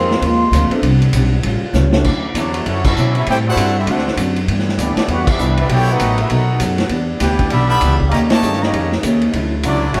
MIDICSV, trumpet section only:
0, 0, Header, 1, 2, 480
1, 0, Start_track
1, 0, Key_signature, 2, "major"
1, 0, Tempo, 303183
1, 1333, Time_signature, 4, 2, 24, 8
1, 15832, End_track
2, 0, Start_track
2, 0, Title_t, "Trumpet section"
2, 0, Program_c, 0, 61
2, 3741, Note_on_c, 0, 66, 73
2, 3747, Note_on_c, 0, 64, 75
2, 3754, Note_on_c, 0, 74, 85
2, 3756, Note_on_c, 0, 57, 74
2, 4183, Note_off_c, 0, 66, 0
2, 4186, Note_off_c, 0, 64, 0
2, 4189, Note_off_c, 0, 74, 0
2, 4191, Note_off_c, 0, 57, 0
2, 4214, Note_on_c, 0, 64, 83
2, 4215, Note_on_c, 0, 69, 91
2, 4215, Note_on_c, 0, 78, 98
2, 4217, Note_on_c, 0, 73, 91
2, 4502, Note_off_c, 0, 69, 0
2, 4506, Note_off_c, 0, 64, 0
2, 4506, Note_off_c, 0, 78, 0
2, 4507, Note_off_c, 0, 73, 0
2, 4519, Note_on_c, 0, 66, 86
2, 4521, Note_on_c, 0, 61, 84
2, 4521, Note_on_c, 0, 69, 88
2, 4521, Note_on_c, 0, 76, 89
2, 4958, Note_off_c, 0, 66, 0
2, 4959, Note_off_c, 0, 61, 0
2, 4959, Note_off_c, 0, 69, 0
2, 4959, Note_off_c, 0, 76, 0
2, 5027, Note_on_c, 0, 76, 91
2, 5032, Note_on_c, 0, 61, 84
2, 5033, Note_on_c, 0, 66, 80
2, 5034, Note_on_c, 0, 69, 82
2, 5180, Note_off_c, 0, 76, 0
2, 5183, Note_off_c, 0, 61, 0
2, 5183, Note_off_c, 0, 66, 0
2, 5184, Note_off_c, 0, 69, 0
2, 5219, Note_on_c, 0, 64, 98
2, 5222, Note_on_c, 0, 72, 95
2, 5226, Note_on_c, 0, 69, 93
2, 5226, Note_on_c, 0, 79, 111
2, 5340, Note_off_c, 0, 64, 0
2, 5342, Note_off_c, 0, 72, 0
2, 5345, Note_off_c, 0, 69, 0
2, 5346, Note_off_c, 0, 79, 0
2, 5512, Note_on_c, 0, 72, 88
2, 5515, Note_on_c, 0, 69, 93
2, 5519, Note_on_c, 0, 64, 101
2, 5523, Note_on_c, 0, 78, 108
2, 5936, Note_off_c, 0, 72, 0
2, 5937, Note_off_c, 0, 69, 0
2, 5939, Note_off_c, 0, 64, 0
2, 5941, Note_off_c, 0, 78, 0
2, 5982, Note_on_c, 0, 69, 79
2, 5984, Note_on_c, 0, 76, 100
2, 5985, Note_on_c, 0, 67, 83
2, 5989, Note_on_c, 0, 60, 86
2, 6138, Note_off_c, 0, 69, 0
2, 6139, Note_off_c, 0, 67, 0
2, 6139, Note_off_c, 0, 76, 0
2, 6141, Note_off_c, 0, 60, 0
2, 6174, Note_on_c, 0, 62, 81
2, 6181, Note_on_c, 0, 78, 89
2, 6185, Note_on_c, 0, 72, 78
2, 6187, Note_on_c, 0, 69, 82
2, 6632, Note_off_c, 0, 62, 0
2, 6636, Note_off_c, 0, 78, 0
2, 6637, Note_off_c, 0, 72, 0
2, 6638, Note_off_c, 0, 69, 0
2, 7610, Note_on_c, 0, 59, 73
2, 7611, Note_on_c, 0, 67, 72
2, 7611, Note_on_c, 0, 74, 86
2, 7618, Note_on_c, 0, 64, 73
2, 8038, Note_off_c, 0, 59, 0
2, 8038, Note_off_c, 0, 67, 0
2, 8038, Note_off_c, 0, 74, 0
2, 8042, Note_off_c, 0, 64, 0
2, 8083, Note_on_c, 0, 67, 81
2, 8087, Note_on_c, 0, 78, 96
2, 8088, Note_on_c, 0, 62, 82
2, 8091, Note_on_c, 0, 71, 87
2, 8360, Note_off_c, 0, 67, 0
2, 8362, Note_off_c, 0, 62, 0
2, 8362, Note_off_c, 0, 78, 0
2, 8364, Note_off_c, 0, 71, 0
2, 8381, Note_on_c, 0, 71, 78
2, 8382, Note_on_c, 0, 76, 101
2, 8384, Note_on_c, 0, 67, 79
2, 8386, Note_on_c, 0, 62, 87
2, 8842, Note_off_c, 0, 71, 0
2, 8843, Note_off_c, 0, 76, 0
2, 8844, Note_off_c, 0, 67, 0
2, 8845, Note_off_c, 0, 62, 0
2, 8863, Note_on_c, 0, 62, 78
2, 8866, Note_on_c, 0, 76, 88
2, 8871, Note_on_c, 0, 67, 83
2, 8876, Note_on_c, 0, 71, 75
2, 9019, Note_off_c, 0, 62, 0
2, 9020, Note_off_c, 0, 76, 0
2, 9023, Note_off_c, 0, 67, 0
2, 9026, Note_off_c, 0, 71, 0
2, 9055, Note_on_c, 0, 64, 97
2, 9056, Note_on_c, 0, 79, 113
2, 9057, Note_on_c, 0, 69, 95
2, 9059, Note_on_c, 0, 73, 96
2, 9326, Note_off_c, 0, 64, 0
2, 9327, Note_off_c, 0, 69, 0
2, 9327, Note_off_c, 0, 79, 0
2, 9328, Note_off_c, 0, 73, 0
2, 9359, Note_on_c, 0, 69, 92
2, 9360, Note_on_c, 0, 63, 90
2, 9362, Note_on_c, 0, 71, 97
2, 9363, Note_on_c, 0, 78, 111
2, 9812, Note_off_c, 0, 63, 0
2, 9812, Note_off_c, 0, 69, 0
2, 9813, Note_off_c, 0, 71, 0
2, 9814, Note_off_c, 0, 78, 0
2, 9834, Note_on_c, 0, 61, 80
2, 9841, Note_on_c, 0, 66, 78
2, 9842, Note_on_c, 0, 76, 93
2, 9845, Note_on_c, 0, 69, 80
2, 9996, Note_off_c, 0, 61, 0
2, 9999, Note_off_c, 0, 66, 0
2, 10000, Note_off_c, 0, 76, 0
2, 10001, Note_off_c, 0, 69, 0
2, 10012, Note_on_c, 0, 78, 96
2, 10017, Note_on_c, 0, 63, 76
2, 10022, Note_on_c, 0, 69, 78
2, 10022, Note_on_c, 0, 71, 71
2, 10440, Note_off_c, 0, 78, 0
2, 10442, Note_off_c, 0, 63, 0
2, 10445, Note_off_c, 0, 69, 0
2, 10445, Note_off_c, 0, 71, 0
2, 11419, Note_on_c, 0, 71, 82
2, 11422, Note_on_c, 0, 64, 85
2, 11422, Note_on_c, 0, 74, 81
2, 11432, Note_on_c, 0, 79, 89
2, 11862, Note_off_c, 0, 71, 0
2, 11864, Note_off_c, 0, 74, 0
2, 11865, Note_off_c, 0, 64, 0
2, 11870, Note_off_c, 0, 79, 0
2, 11894, Note_on_c, 0, 67, 89
2, 11898, Note_on_c, 0, 74, 88
2, 11906, Note_on_c, 0, 83, 102
2, 11907, Note_on_c, 0, 76, 100
2, 12149, Note_off_c, 0, 74, 0
2, 12153, Note_off_c, 0, 76, 0
2, 12155, Note_off_c, 0, 67, 0
2, 12158, Note_off_c, 0, 83, 0
2, 12168, Note_on_c, 0, 74, 89
2, 12172, Note_on_c, 0, 76, 103
2, 12174, Note_on_c, 0, 67, 85
2, 12177, Note_on_c, 0, 83, 117
2, 12623, Note_off_c, 0, 74, 0
2, 12626, Note_off_c, 0, 76, 0
2, 12627, Note_off_c, 0, 67, 0
2, 12628, Note_off_c, 0, 83, 0
2, 12844, Note_on_c, 0, 73, 85
2, 12844, Note_on_c, 0, 82, 93
2, 12848, Note_on_c, 0, 75, 84
2, 12858, Note_on_c, 0, 67, 91
2, 12978, Note_off_c, 0, 73, 0
2, 12978, Note_off_c, 0, 82, 0
2, 12981, Note_off_c, 0, 75, 0
2, 12989, Note_off_c, 0, 67, 0
2, 13132, Note_on_c, 0, 75, 90
2, 13138, Note_on_c, 0, 67, 89
2, 13139, Note_on_c, 0, 73, 92
2, 13142, Note_on_c, 0, 81, 108
2, 13586, Note_off_c, 0, 75, 0
2, 13589, Note_off_c, 0, 67, 0
2, 13589, Note_off_c, 0, 73, 0
2, 13591, Note_off_c, 0, 81, 0
2, 13631, Note_on_c, 0, 73, 85
2, 13635, Note_on_c, 0, 75, 84
2, 13639, Note_on_c, 0, 82, 96
2, 13640, Note_on_c, 0, 67, 85
2, 14109, Note_off_c, 0, 73, 0
2, 14112, Note_off_c, 0, 75, 0
2, 14114, Note_off_c, 0, 67, 0
2, 14114, Note_off_c, 0, 82, 0
2, 15298, Note_on_c, 0, 74, 102
2, 15300, Note_on_c, 0, 66, 77
2, 15303, Note_on_c, 0, 57, 83
2, 15306, Note_on_c, 0, 64, 86
2, 15725, Note_off_c, 0, 74, 0
2, 15726, Note_off_c, 0, 66, 0
2, 15728, Note_off_c, 0, 57, 0
2, 15730, Note_off_c, 0, 64, 0
2, 15770, Note_on_c, 0, 69, 93
2, 15770, Note_on_c, 0, 73, 100
2, 15773, Note_on_c, 0, 64, 96
2, 15776, Note_on_c, 0, 78, 104
2, 15832, Note_off_c, 0, 64, 0
2, 15832, Note_off_c, 0, 69, 0
2, 15832, Note_off_c, 0, 73, 0
2, 15832, Note_off_c, 0, 78, 0
2, 15832, End_track
0, 0, End_of_file